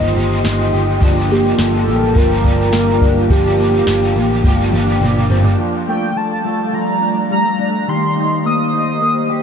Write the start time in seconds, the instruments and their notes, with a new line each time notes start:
Already playing: picked electric bass G1, clean electric guitar D#3 A#3 D#4 G4, overdriven electric guitar G3 A#3 D#4 G4 C5, ambient pad F4 D#5 G5 C6, soft synth lead D#5
0.15 picked electric bass G1, clean electric guitar G4, overdriven electric guitar G4 C5, ride
0.19 overdriven electric guitar D#4
0.44 picked electric bass G1, clean electric guitar D#4, snare, ride, tambourine
0.73 picked electric bass G1, clean electric guitar G4, ride
0.99 picked electric bass G1, overdriven electric guitar G2 D3 F3, clean electric guitar F3 D4, ambient pad F5 D6, kick, ride
1.04 overdriven electric guitar A#3 D4 G4
1.30 clean electric guitar A#3, soft synth lead G4, ride
1.58 picked electric bass G1, clean electric guitar F3, soft synth lead A4, snare, ride, tambourine
1.87 picked electric bass A1, clean electric guitar A#3, ride
2.14 picked electric bass G1, overdriven electric guitar G2 D3 F3, clean electric guitar F3, soft synth lead A#4, kick, ride
2.18 overdriven electric guitar A#3 D4 G4
2.44 picked electric bass G1, clean electric guitar D4, kick, ride
2.72 picked electric bass G1, clean electric guitar A#3, snare, ride, tambourine
3.01 picked electric bass G1, clean electric guitar D4, kick, ride
3.30 picked electric bass G1, overdriven electric guitar G2 D3 F3 A#3 D4 G4, clean electric guitar F3 D4, soft synth lead G4, kick, ride
3.58 clean electric guitar A#3, ride
3.86 picked electric bass G1, overdriven electric guitar F3 A#3 D4 G4, clean electric guitar F3, snare, ride, tambourine
4.15 picked electric bass A1, clean electric guitar A#3, ride
4.44 picked electric bass G1, overdriven electric guitar G2 D3 F3 A#3 D4 G4, clean electric guitar F3, kick, high tom, ride
4.58 high tom
4.72 picked electric bass G1, overdriven electric guitar A#3 D4 G4, clean electric guitar D4, mid tom, ride
4.76 overdriven electric guitar F3
4.87 mid tom
5.01 picked electric bass G1, clean electric guitar A#3, mid tom, ride
5.16 mid tom
5.30 picked electric bass G1, clean electric guitar C4, floor tom, ride
5.44 clean electric guitar D4, floor tom
5.58 clean electric guitar F3 D4, ambient pad G3 A3 D5 F5
5.87 clean electric guitar A3, soft synth lead G5
6.16 clean electric guitar F3, soft synth lead A5
6.45 clean electric guitar A3
6.73 clean electric guitar F3, soft synth lead A#5
7.01 clean electric guitar D4
7.30 clean electric guitar G3, soft synth lead A#5
7.44 clean electric guitar A3
7.59 clean electric guitar D4, soft synth lead A#5
7.86 clean electric guitar D#3 G4, ambient pad G4 C5 D#5, soft synth lead C6
8.16 clean electric guitar D#4
8.45 clean electric guitar A#3, soft synth lead D#6
8.73 clean electric guitar D#4
9.01 clean electric guitar A#3
9.30 clean electric guitar G4